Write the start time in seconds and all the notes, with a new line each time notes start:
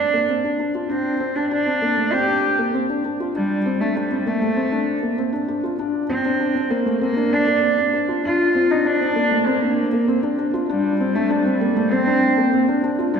Already playing: D4
0.13 A#3
0.29 C4
0.44 D4
0.59 D4
0.75 F4
0.89 C4 D4
1.20 C4
1.36 D4
1.51 D4
1.66 C4
1.82 A#3
1.97 A3
2.13 C4 G4
2.28 D4
2.59 A#3
2.74 C4
2.89 D4
3.05 D4
3.20 F4
3.35 G3 D4
3.66 C4
3.81 A3 D4
3.96 G3 D4
4.11 C4
4.26 A3 A#3
4.41 A3
4.56 C4
4.72 D4
5.03 A#3
5.18 C4
5.33 D4
5.48 D4
5.63 F4
5.79 D4
6.09 C4
6.25 D4
6.40 D4
6.55 C4
6.70 A#3
6.86 A3
7.01 A#3 C4
7.17 D4
7.32 D4
7.47 A#3
7.62 C4
7.78 D4
7.93 D4
8.08 F4
8.24 D4 F4
8.55 C4
8.70 D4 D#4
8.85 D4
9.01 C4
9.16 A#3
9.31 A3
9.47 A#3 C4
9.62 D4
9.93 A#3
10.08 C4
10.23 D4
10.38 D4
10.54 F4
10.69 G3 D4
11.00 C4
11.15 A3 D4
11.30 G3 D4
11.45 C4
11.61 A#3
11.76 A3
11.91 C4
12.07 D4
12.37 A#3
12.53 C4
12.68 D4
12.83 D4
12.99 F4
13.14 G3 D4